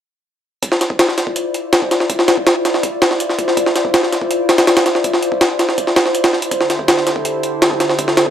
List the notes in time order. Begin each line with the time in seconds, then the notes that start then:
0.62 E4 F4 C5 D5, kick, closed hi-hat
0.72 snare
0.81 snare, closed hi-hat
0.90 kick
0.99 snare, closed hi-hat
1.09 snare
1.18 snare, closed hi-hat
1.27 kick
1.36 closed hi-hat
1.54 closed hi-hat
1.73 snare, closed hi-hat
1.82 kick
1.91 snare, closed hi-hat
2.00 snare
2.10 kick, closed hi-hat
2.19 snare
2.28 snare, closed hi-hat
2.37 kick
2.47 snare, closed hi-hat
2.65 snare, closed hi-hat
2.74 snare
2.83 kick, closed hi-hat
3.02 snare, closed hi-hat
3.11 snare
3.20 closed hi-hat
3.29 snare
3.39 kick, closed hi-hat
3.48 snare
3.57 kick, closed hi-hat
3.66 snare
3.76 snare, closed hi-hat
3.85 kick
3.94 snare, closed hi-hat
4.03 snare
4.12 snare, closed hi-hat
4.21 kick
4.31 closed hi-hat
4.49 snare, closed hi-hat
4.58 snare, closed hi-hat
4.67 snare, closed hi-hat
4.77 snare, closed hi-hat
4.86 snare, closed hi-hat
4.95 snare
5.04 kick, closed hi-hat
5.13 snare
5.23 closed hi-hat
5.32 kick
5.41 snare, closed hi-hat
5.59 snare, closed hi-hat
5.69 snare
5.78 kick, closed hi-hat
5.87 snare
5.96 snare, closed hi-hat
6.06 snare
6.15 closed hi-hat
6.24 snare, closed hi-hat
6.33 snare
6.42 closed hi-hat
6.51 D3 E4 G4 A4, kick, closed hi-hat
6.61 snare
6.70 snare, closed hi-hat
6.79 kick
6.88 snare, closed hi-hat
6.97 snare
7.07 snare, closed hi-hat
7.16 kick
7.25 closed hi-hat
7.43 closed hi-hat
7.62 snare, closed hi-hat
7.71 kick
7.80 snare, closed hi-hat
7.89 snare
7.99 kick, closed hi-hat
8.08 snare
8.17 snare, closed hi-hat
8.26 kick